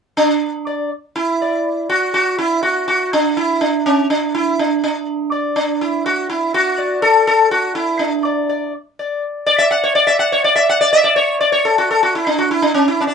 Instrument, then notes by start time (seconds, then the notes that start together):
sitar
0.17 D4
0.67 D5
1.16 E4
1.42 D5
1.89 F#4
2.14 F#4
2.38 E4
2.63 F#4
2.88 F#4
3.13 D4
3.37 E4
3.61 D4
3.86 C#4
4.10 D4
4.35 E4
4.59 D4
4.84 D4
5.32 D5
5.56 D4
5.81 E4
6.06 F#4
6.30 E4
6.54 F#4
6.78 D5
7.02 A4
7.27 A4
7.51 F#4
7.75 E4
7.99 D4
8.25 D5
8.49 D5
8.99 D5
9.46 D5
9.58 E5
9.71 F#5
9.84 C#5
9.95 D5
10.07 E5
10.19 F#5
10.32 C#5
10.44 D5
10.56 E5
10.69 F#5
10.81 D5
10.93 E5
11.04 D5
11.16 C#5
11.41 D5
11.52 C#5
11.65 A4
11.78 F#4
11.91 A4
12.03 F#4
12.15 E4
12.27 D4
12.38 F#4
12.51 E4
12.62 D4
12.74 C#4
12.88 E4
13.00 C#4 D4
13.07 D4